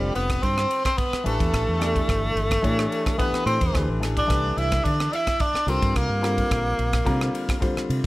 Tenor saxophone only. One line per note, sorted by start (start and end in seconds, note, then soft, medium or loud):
0.00 0.12 G3 medium
0.15 0.44 B3 medium
0.43 0.85 C4 medium
0.85 0.99 C4 medium
0.98 1.26 B3 medium
1.26 3.15 A3 medium
3.18 3.44 B3 medium
3.46 3.86 C4 medium
4.18 4.59 D4 medium
4.58 4.86 E4 medium
4.84 5.15 D4 medium
5.13 5.43 E4 medium
5.41 5.70 D4 medium
5.69 5.98 C4 medium
5.96 7.89 A#3 medium